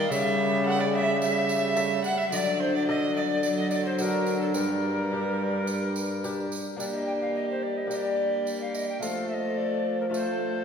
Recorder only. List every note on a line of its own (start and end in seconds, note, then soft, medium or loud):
0.00 0.11 D5 loud
0.12 0.69 E5 loud
0.67 0.81 F#5 loud
0.82 0.97 D5 loud
0.95 1.21 E5 loud
1.22 1.79 E5 loud
2.06 2.19 F#5 loud
2.20 2.32 E5 loud
2.33 2.60 D5 loud
2.33 2.37 D#5 loud
2.61 2.74 C5 loud
2.77 2.89 D5 medium
2.90 2.96 D#5 medium
3.17 3.43 D5 loud
3.17 3.22 D#5 loud
3.45 3.58 D5 loud
3.59 3.70 D#5 medium
3.71 3.77 D5 medium
3.85 3.97 C5 medium
3.97 4.03 C5 medium
4.02 4.41 A#4 medium
4.40 4.51 A4 medium
4.52 6.46 A#4 loud
6.79 6.85 D5 medium
6.95 7.06 D#5 medium
7.07 7.13 G5 medium
7.21 7.34 F5 medium
7.35 7.49 D#5 medium
7.51 7.64 C5 medium
7.63 7.79 D5 medium
7.78 7.91 D#5 medium
7.91 7.96 D#5 medium
7.95 8.59 D5 medium
8.61 8.77 F5 medium
8.75 8.88 D#5 medium
8.89 9.01 G5 medium
9.01 9.28 F5 medium
9.29 9.35 E5 medium
9.34 9.59 D#5 medium
9.58 9.99 D5 medium
10.00 10.06 A#4 medium
10.14 10.64 C5 medium